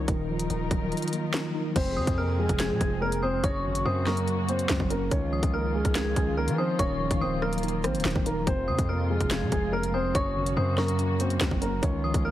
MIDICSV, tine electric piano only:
0, 0, Header, 1, 2, 480
1, 0, Start_track
1, 0, Tempo, 419580
1, 90, Time_signature, 4, 2, 24, 8
1, 14084, End_track
2, 0, Start_track
2, 0, Title_t, "Tine electric piano"
2, 0, Program_c, 0, 4
2, 0, Control_c, 0, 64, 127
2, 0, Note_on_c, 0, 51, 82
2, 0, Note_on_c, 0, 53, 84
2, 0, Note_on_c, 0, 56, 81
2, 95, Note_off_c, 0, 51, 0
2, 95, Note_on_c, 0, 51, 101
2, 107, Control_c, 0, 64, 0
2, 116, Note_off_c, 0, 53, 0
2, 116, Note_off_c, 0, 56, 0
2, 290, Control_c, 0, 64, 127
2, 333, Note_on_c, 0, 53, 88
2, 560, Note_off_c, 0, 51, 0
2, 574, Note_on_c, 0, 51, 81
2, 807, Note_on_c, 0, 54, 84
2, 1039, Note_off_c, 0, 51, 0
2, 1053, Note_on_c, 0, 51, 87
2, 1289, Note_on_c, 0, 58, 80
2, 1513, Note_off_c, 0, 51, 0
2, 1527, Note_on_c, 0, 51, 86
2, 1532, Note_off_c, 0, 53, 0
2, 1771, Note_on_c, 0, 63, 83
2, 2009, Note_off_c, 0, 51, 0
2, 2009, Note_off_c, 0, 54, 0
2, 2010, Note_off_c, 0, 58, 0
2, 2011, Note_off_c, 0, 63, 0
2, 2014, Note_on_c, 0, 41, 103
2, 2023, Control_c, 0, 64, 0
2, 2207, Control_c, 0, 64, 127
2, 2255, Note_on_c, 0, 48, 86
2, 2479, Note_off_c, 0, 41, 0
2, 2493, Note_on_c, 0, 41, 78
2, 2734, Note_on_c, 0, 53, 87
2, 2963, Note_off_c, 0, 41, 0
2, 2976, Note_on_c, 0, 41, 93
2, 3215, Note_on_c, 0, 56, 85
2, 3446, Note_off_c, 0, 41, 0
2, 3453, Note_off_c, 0, 48, 0
2, 3460, Note_on_c, 0, 41, 83
2, 3688, Note_on_c, 0, 60, 91
2, 3929, Note_off_c, 0, 60, 0
2, 3931, Note_on_c, 0, 42, 95
2, 3933, Note_off_c, 0, 53, 0
2, 3933, Note_off_c, 0, 56, 0
2, 3935, Note_off_c, 0, 41, 0
2, 3945, Control_c, 0, 64, 0
2, 4176, Control_c, 0, 64, 127
2, 4176, Note_on_c, 0, 49, 86
2, 4397, Note_off_c, 0, 42, 0
2, 4410, Note_on_c, 0, 42, 83
2, 4649, Note_on_c, 0, 54, 83
2, 4876, Note_off_c, 0, 42, 0
2, 4890, Note_on_c, 0, 42, 95
2, 5135, Note_on_c, 0, 58, 81
2, 5359, Note_off_c, 0, 42, 0
2, 5373, Note_off_c, 0, 49, 0
2, 5373, Note_on_c, 0, 42, 85
2, 5609, Note_on_c, 0, 61, 95
2, 5847, Note_on_c, 0, 51, 104
2, 5850, Note_off_c, 0, 54, 0
2, 5850, Note_off_c, 0, 61, 0
2, 5852, Note_off_c, 0, 42, 0
2, 5853, Note_off_c, 0, 58, 0
2, 5865, Control_c, 0, 64, 0
2, 6038, Control_c, 0, 64, 127
2, 6091, Note_on_c, 0, 53, 86
2, 6317, Note_off_c, 0, 51, 0
2, 6331, Note_on_c, 0, 51, 81
2, 6574, Note_on_c, 0, 56, 80
2, 6799, Note_off_c, 0, 51, 0
2, 6813, Note_on_c, 0, 51, 93
2, 7048, Note_on_c, 0, 61, 86
2, 7272, Note_off_c, 0, 51, 0
2, 7286, Note_on_c, 0, 51, 86
2, 7291, Note_off_c, 0, 53, 0
2, 7526, Note_on_c, 0, 63, 93
2, 7759, Note_off_c, 0, 51, 0
2, 7769, Note_off_c, 0, 61, 0
2, 7769, Note_off_c, 0, 63, 0
2, 7772, Note_off_c, 0, 56, 0
2, 7773, Note_on_c, 0, 51, 102
2, 7786, Control_c, 0, 64, 0
2, 8008, Control_c, 0, 64, 127
2, 8011, Note_on_c, 0, 53, 87
2, 8237, Note_off_c, 0, 51, 0
2, 8251, Note_on_c, 0, 51, 86
2, 8483, Note_on_c, 0, 54, 85
2, 8717, Note_off_c, 0, 51, 0
2, 8731, Note_on_c, 0, 51, 91
2, 8969, Note_on_c, 0, 58, 87
2, 9193, Note_off_c, 0, 51, 0
2, 9207, Note_on_c, 0, 51, 89
2, 9211, Note_off_c, 0, 53, 0
2, 9451, Note_on_c, 0, 63, 85
2, 9687, Note_off_c, 0, 54, 0
2, 9689, Note_off_c, 0, 51, 0
2, 9690, Note_off_c, 0, 58, 0
2, 9691, Note_off_c, 0, 63, 0
2, 9694, Note_on_c, 0, 41, 99
2, 9706, Control_c, 0, 64, 0
2, 9931, Control_c, 0, 64, 127
2, 9933, Note_on_c, 0, 48, 87
2, 10157, Note_off_c, 0, 41, 0
2, 10171, Note_on_c, 0, 41, 78
2, 10414, Note_on_c, 0, 53, 82
2, 10643, Note_off_c, 0, 41, 0
2, 10657, Note_on_c, 0, 41, 96
2, 10894, Note_on_c, 0, 56, 83
2, 11125, Note_off_c, 0, 41, 0
2, 11132, Note_off_c, 0, 48, 0
2, 11138, Note_on_c, 0, 41, 85
2, 11367, Note_on_c, 0, 60, 90
2, 11609, Note_off_c, 0, 60, 0
2, 11610, Note_on_c, 0, 42, 100
2, 11612, Note_off_c, 0, 53, 0
2, 11612, Note_off_c, 0, 56, 0
2, 11615, Note_off_c, 0, 41, 0
2, 11626, Control_c, 0, 64, 0
2, 11807, Control_c, 0, 64, 127
2, 11857, Note_on_c, 0, 49, 87
2, 12077, Note_off_c, 0, 42, 0
2, 12091, Note_on_c, 0, 42, 81
2, 12328, Note_on_c, 0, 54, 78
2, 12558, Note_off_c, 0, 42, 0
2, 12571, Note_on_c, 0, 42, 96
2, 12816, Note_on_c, 0, 58, 84
2, 13041, Note_off_c, 0, 42, 0
2, 13054, Note_off_c, 0, 49, 0
2, 13055, Note_on_c, 0, 42, 83
2, 13290, Note_on_c, 0, 61, 94
2, 13528, Note_on_c, 0, 51, 106
2, 13530, Note_off_c, 0, 54, 0
2, 13530, Note_off_c, 0, 61, 0
2, 13533, Note_off_c, 0, 42, 0
2, 13533, Note_off_c, 0, 58, 0
2, 13547, Control_c, 0, 64, 0
2, 13756, Control_c, 0, 64, 127
2, 13774, Note_on_c, 0, 53, 81
2, 13998, Note_off_c, 0, 51, 0
2, 14012, Note_on_c, 0, 51, 83
2, 14084, Note_off_c, 0, 51, 0
2, 14084, Note_off_c, 0, 53, 0
2, 14084, End_track
0, 0, End_of_file